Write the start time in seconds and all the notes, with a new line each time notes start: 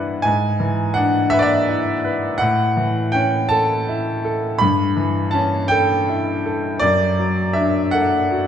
Already playing: G2 E3 E4 B4 D5 E5 F#5
0.22 G#2 G#5
0.60 E3
0.94 D4 F#5
1.30 B4 E5
1.39 D5 E5
1.68 E4
2.04 B4
2.38 A2 F#5
2.77 E3
3.12 C#4 G5
3.49 A4 A5
3.88 E4
4.25 A4
4.58 G2 B5
4.97 E3
5.31 C#4 A5
5.68 A4 G5
6.09 E4
6.46 A4
6.80 F#2 D5
7.19 F#3
7.53 D4 E5
7.91 A4 F#5
8.31 F#4